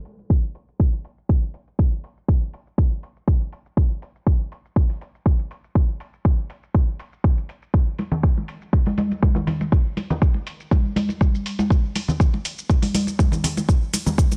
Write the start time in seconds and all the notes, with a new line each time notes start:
0.05 open hi-hat, shaker
0.19 shaker
0.30 kick, shaker
0.55 open hi-hat, shaker
0.68 shaker
0.80 kick, shaker
0.93 open hi-hat
1.05 open hi-hat, shaker
1.18 shaker
1.29 kick, shaker
1.43 shaker
1.54 open hi-hat, shaker
1.67 shaker
1.79 kick, shaker
2.04 open hi-hat, shaker
2.17 shaker
2.28 kick, shaker
2.54 open hi-hat, shaker
2.67 shaker
2.78 kick, shaker
3.03 open hi-hat, shaker
3.16 shaker
3.28 kick, shaker
3.41 shaker
3.53 open hi-hat, shaker
3.66 shaker
3.77 kick, shaker
4.02 open hi-hat, shaker
4.16 shaker
4.27 kick, shaker
4.52 open hi-hat, shaker
4.65 shaker
4.76 kick, shaker
4.90 open hi-hat
5.01 open hi-hat, shaker
5.15 shaker
5.26 kick, shaker
5.39 shaker
5.51 open hi-hat, shaker
5.64 shaker
5.75 kick, shaker
6.00 open hi-hat, shaker
6.13 shaker
6.25 kick, shaker
6.50 open hi-hat, shaker
6.63 shaker
6.75 kick, shaker
6.99 open hi-hat, shaker
7.13 shaker
7.24 kick, shaker
7.38 shaker
7.49 open hi-hat, shaker
7.62 shaker
7.74 kick, shaker
7.99 open hi-hat, muted conga, shaker
8.12 low conga, shaker
8.23 kick, shaker
8.38 muted conga
8.48 open hi-hat, shaker
8.62 shaker
8.73 kick, muted conga, shaker
8.86 open hi-hat, high conga
8.98 open hi-hat, high conga, shaker
9.11 muted conga, shaker
9.23 kick, high conga, shaker
9.35 high conga, low conga, shaker
9.47 open hi-hat, low conga, shaker
9.61 muted conga, shaker
9.72 kick, shaker
9.97 open hi-hat, muted conga, shaker
10.10 low conga, shaker
10.22 kick, shaker
10.34 muted conga
10.47 open hi-hat, shaker
10.60 shaker
10.71 kick, muted conga, high conga, shaker
10.96 open hi-hat, high conga, shaker
11.09 muted conga, shaker
11.21 kick, high conga, shaker
11.35 shaker
11.46 open hi-hat, shaker
11.59 muted conga, high conga, shaker
11.70 kick, shaker
11.96 open hi-hat, muted conga, shaker
12.08 low conga, shaker
12.20 kick, shaker
12.34 muted conga
12.45 open hi-hat, shaker
12.58 shaker
12.70 kick, muted conga, shaker
12.82 open hi-hat, high conga
12.94 open hi-hat, high conga, shaker
13.07 muted conga, shaker
13.19 kick, high conga, shaker
13.32 high conga, low conga, shaker
13.44 open hi-hat, low conga, shaker
13.57 muted conga, shaker
13.69 kick, shaker
13.94 open hi-hat, muted conga, shaker
14.06 high conga, low conga, shaker
14.18 kick, shaker
14.32 muted conga, shaker